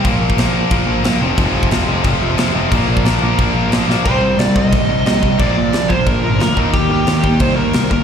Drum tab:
CC |x---x---x---x---|x---x---x---x---|x---x---x---x---|x---x---x---x---|
SD |----o-------o---|----o-------o---|----o-------o-o-|----o-------o---|
BD |o--o----o-------|o--o----o-------|o--o----o-------|o-----o-o-----o-|

CC |x---x---x---x---|x---x---x---x---|
SD |----o-------o---|----o-------o---|
BD |o-----o-o-----o-|o-----o-o-----o-|